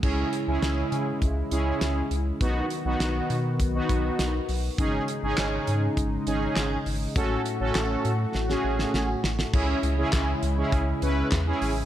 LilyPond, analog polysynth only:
\new Staff \with { instrumentName = "Analog polysynth" } { \time 4/4 \key cis \minor \tempo 4 = 101 <cis' e' gis'>8 r16 <cis' e' gis'>4 r8. <cis' e' gis'>8. r8. | <b dis' fis'>8 r16 <b dis' fis'>8. r8. <b dis' fis'>4 r8. | <cis' dis' gis'>8 r16 <cis' dis' gis'>4 r8. <cis' dis' gis'>8. r8. | <cis' fis' a'>8 r16 <cis' fis' a'>8. r8. <cis' fis' gis'>4 r8. |
<cis' e' gis'>8 r16 <cis' e' gis'>8 r8 <cis' e' gis'>8 r16 <cis' e' b'>8 r16 <cis' e' gis'>8 r16 | }